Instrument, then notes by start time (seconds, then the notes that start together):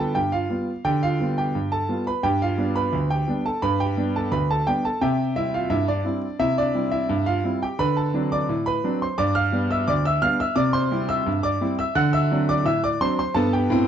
grand piano
Already playing: D3 G3 B3 F4 G4 B4 G5 B5
0.00 A4 A5
0.15 G2 G4 G5
0.32 F4 F5
0.50 G3 B3 F4
0.85 D3 G4 G5
1.03 F4 F5
1.20 G3 B3 F4
1.38 G4 G5
1.55 G2
1.72 A4 A5
1.89 G3 B3 F4
2.07 B4 B5
2.23 G2 G4 G5
2.42 F4 F5
2.58 G3 B3 D4
2.75 B4 B5
2.93 D2
3.10 G4 G5
3.28 G3 B3 D4
3.46 A4 A5
3.62 G2 B4 B5
3.80 G4 G5
3.97 G3 B3 D4
4.16 A4 A5
4.31 D2 B4 B5
4.51 A4 A5
4.67 G3 B3 D4 G4 G5
4.85 A4 A5
5.01 C3 G4 E5 G5
5.36 G3 C4 E4 E5
5.54 F4 F5
5.70 G2 E4 E5
5.88 D4 D5
6.05 G3 C4 E4
6.39 C3 E4 E5
6.58 D4 D5
6.75 G3 C4 E4
6.91 E4 E5
7.09 G2
7.26 F4 F5
7.44 G3 C4 E4
7.63 G4 G5
7.79 D3 B4 B5
7.97 A4 A5
8.14 F#3 C4 D4
8.32 D5 D6
8.49 A2
8.66 B4 B5
8.84 F#3 C4 D4
9.02 C5 C6
9.18 G2 D5 D6
9.35 F5 F6
9.52 G3 B3 D4
9.71 E5 E6
9.88 D2 D5 D6
10.05 E5 E6
10.22 G3 B3 D4 F5 F6
10.40 E5 E6
10.56 C3 D5 D6
10.73 C5 C6
10.91 G3 C4 E4
11.09 E5 E6
11.26 G2
11.43 D5 D6
11.61 G3 C4 E4
11.79 E5 E6
11.95 D3 F#5 F#6
12.13 E5 E6
12.31 F#3 C4 D4
12.49 D5 D6
12.65 A2 E5 E6
12.84 D5 D6
13.01 F#3 C4 D4 C5 C6
13.19 C5 C6
13.34 G2 B3 A4 A5
13.53 G4 G5
13.70 A2 C4